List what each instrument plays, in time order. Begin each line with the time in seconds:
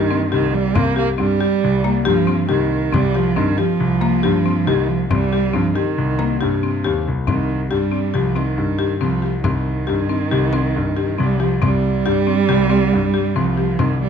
Already playing: grand piano G2, cello D#3
0.11 marimba C4
0.32 grand piano C2, cello D#3, marimba G4, frame drum
0.54 cello G3
0.75 grand piano C2, cello A#3, marimba C4, frame drum
0.96 cello A#3, marimba G4
1.18 grand piano G2, cello G3, marimba C4, frame drum
1.40 marimba G4
1.64 grand piano C2
1.84 marimba A#3, frame drum
2.05 grand piano G2, cello F3, marimba G4
2.27 marimba C4, frame drum
2.49 grand piano C2, cello D#3, marimba G4, frame drum
2.93 grand piano C2, cello G3, marimba C4, frame drum
3.14 cello F3, marimba G4
3.36 grand piano G2, cello D#3, marimba C4, frame drum
3.58 cello F3, marimba G4
3.80 grand piano C2
4.01 marimba A#3, frame drum
4.23 grand piano G2, marimba G4
4.45 marimba C4, frame drum
4.66 grand piano C2, cello D#3, marimba G4, frame drum
4.89 cello F3
5.10 grand piano C2, cello G3, marimba C4, frame drum
5.33 marimba G4
5.54 grand piano G2, cello F3, marimba C4
5.75 cello D#3, marimba G4
5.98 grand piano C2
6.19 marimba A#3, frame drum
6.40 grand piano G2, cello C3, marimba G4
6.63 marimba C4
6.84 grand piano D#2, marimba G4
7.06 grand piano C2, frame drum
7.27 grand piano C2, cello D#3, marimba C4, frame drum
7.71 grand piano G2, cello G3, marimba G4
7.92 marimba C4
8.14 grand piano C2, cello F3, marimba G4, frame drum
8.36 cello D#3, marimba C4, frame drum
8.58 grand piano G2
8.79 marimba G4
9.01 grand piano C2, cello F3, marimba C4
9.22 marimba G4
9.44 grand piano C2, cello D#3, marimba C4, frame drum
9.87 grand piano G2, marimba G4
10.09 marimba C4
10.31 grand piano C2, marimba G4, frame drum
10.53 marimba C4, frame drum
10.76 grand piano G2
10.97 marimba G4
11.18 grand piano C2, cello G3, marimba C4
11.39 cello F3, marimba G4
11.61 grand piano C2, cello G3, marimba C4, frame drum
12.06 grand piano G2, marimba G4
12.27 marimba C4
12.49 grand piano C2, marimba G4, frame drum
12.70 marimba C4, frame drum
12.93 grand piano G2
13.14 marimba G4
13.36 grand piano C2, cello F3, marimba C4
13.57 marimba G4
13.79 grand piano C2, cello D#3, marimba C4, frame drum
14.01 cello G3